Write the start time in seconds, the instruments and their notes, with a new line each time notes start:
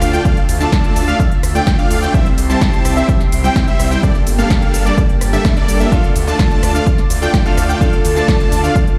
Already playing: supersaw synth A3 D4 F4 D5 F5, analog synth pad F4 D5 A5, analog synth lead F5, sub drop
0.01 detuned saw bass D2, cross-stick, open hi-hat, ride, shaker
0.13 supersaw synth A3 D4 F4 D5 G5, analog synth lead G5, closed hi-hat, shaker
0.25 supersaw synth A3 D4 F4 D5 F5, analog synth pad E5, analog synth lead F5, kick, closed hi-hat, shaker
0.37 closed hi-hat
0.49 detuned saw bass D2, open hi-hat, ride, shaker
0.61 supersaw synth A3 D4 F4 D5 A5, analog synth lead A5, snare, shaker
0.72 kick, snare, closed hi-hat, shaker
0.84 closed hi-hat
0.96 detuned saw bass D2, open hi-hat, ride, shaker
1.08 supersaw synth A3 D4 F4 D5 F5, analog synth lead F5, closed hi-hat, shaker
1.20 kick, closed hi-hat, shaker
1.32 closed hi-hat
1.43 detuned saw bass D2, cross-stick, open hi-hat, ride, shaker
1.55 supersaw synth A3 D4 F4 D5 G5, analog synth lead G5, closed hi-hat, shaker
1.67 kick, snare, closed hi-hat, shaker
1.79 supersaw synth A3 D4 F4 D5 F5, analog synth lead F5, closed hi-hat
1.90 detuned saw bass D2, open hi-hat, ride, shaker
2.02 supersaw synth A3 D4 F4 D5 G5, analog synth lead G5, closed hi-hat, shaker
2.14 supersaw synth G3 C4 E4 C5 E5, analog synth pad G4 E5 C6, analog synth lead E5, kick, closed hi-hat, shaker
2.26 closed hi-hat
2.38 detuned saw bass C2, open hi-hat, ride, shaker
2.50 supersaw synth G3 C4 E4 C5 A5, analog synth lead A5, closed hi-hat, shaker
2.61 kick, snare, closed hi-hat, shaker
2.73 closed hi-hat
2.85 detuned saw bass C2, cross-stick, open hi-hat, ride, shaker
2.97 supersaw synth G3 C4 E4 C5 E5, analog synth lead E5, closed hi-hat, shaker
3.09 kick, closed hi-hat, shaker
3.20 snare, closed hi-hat
3.32 detuned saw bass C2, open hi-hat, ride, shaker
3.44 supersaw synth G3 C4 E4 C5 G5, analog synth lead G5, closed hi-hat, shaker
3.56 kick, snare, closed hi-hat, shaker
3.68 supersaw synth G3 C4 E4 C5 E5, analog synth lead E5, closed hi-hat
3.79 detuned saw bass C2, cross-stick, open hi-hat, ride, shaker
3.91 supersaw synth G3 C4 E4 C5 G5, analog synth lead G5, closed hi-hat, shaker
4.03 supersaw synth G3 A#3 D4 A4 D5, analog synth pad A#3 G4 A5, analog synth lead D5, kick, closed hi-hat, shaker
4.15 closed hi-hat
4.27 detuned saw bass G1, open hi-hat, ride, shaker
4.39 supersaw synth G3 A#3 D4 A4 F5, analog synth lead F5, snare, closed hi-hat, shaker
4.50 kick, snare, closed hi-hat, shaker
4.62 closed hi-hat
4.74 detuned saw bass G1, open hi-hat, ride, shaker
4.86 supersaw synth G3 A#3 D4 A4 D5, analog synth lead D5, closed hi-hat, shaker
4.98 kick, closed hi-hat, shaker
5.09 closed hi-hat
5.21 detuned saw bass G1, cross-stick, open hi-hat, ride, shaker
5.33 supersaw synth G3 A#3 D4 A4 E5, analog synth lead E5, closed hi-hat, shaker
5.45 kick, snare, closed hi-hat, shaker
5.57 supersaw synth G3 A#3 D4 A4 D5, analog synth lead D5, closed hi-hat
5.68 detuned saw bass G1, open hi-hat, ride, shaker
5.80 supersaw synth G3 A#3 D4 A4 E5, analog synth lead E5, closed hi-hat, shaker
5.91 grand piano D3 A3 D4 F4 A4, supersaw synth A3 D4 F4 D5 F5, analog synth pad F4 D5 A5, analog synth lead F5, kick, closed hi-hat, shaker
6.04 closed hi-hat
6.16 detuned saw bass D2, open hi-hat, ride, shaker
6.27 supersaw synth A3 D4 F4 D5 A5, analog synth lead A5, closed hi-hat, shaker
6.39 kick, snare, closed hi-hat, shaker
6.51 closed hi-hat
6.63 detuned saw bass D2, cross-stick, open hi-hat, ride, shaker
6.75 supersaw synth A3 D4 F4 D5 F5, analog synth lead F5, closed hi-hat, shaker
6.87 kick, closed hi-hat, shaker
6.98 snare, closed hi-hat
7.10 detuned saw bass D2, open hi-hat, ride, shaker
7.22 supersaw synth A3 D4 F4 D5 G5, analog synth lead G5, closed hi-hat, shaker
7.34 kick, snare, closed hi-hat, shaker
7.45 grand piano D3 A3 D4 F4 A4, supersaw synth A3 D4 F4 D5 F5, analog synth lead F5, closed hi-hat
7.57 detuned saw bass D2, cross-stick, open hi-hat, ride, shaker
7.69 supersaw synth A3 D4 F4 D5 G5, analog synth lead G5, closed hi-hat, shaker
7.80 grand piano D3 A3 D4 F4 A4, supersaw synth A3 D4 F4 D5, analog synth lead F5, kick, closed hi-hat, shaker
7.93 closed hi-hat
8.05 detuned saw bass D2, open hi-hat, ride, shaker
8.16 supersaw synth A3 D4 F4 D5 A5, analog synth lead A5, snare, shaker
8.28 kick, snare, closed hi-hat, shaker
8.40 closed hi-hat
8.52 detuned saw bass D2, open hi-hat, ride, shaker
8.64 supersaw synth A3 D4 F4 D5 F5, analog synth lead F5, shaker
8.76 kick, closed hi-hat, shaker
8.87 closed hi-hat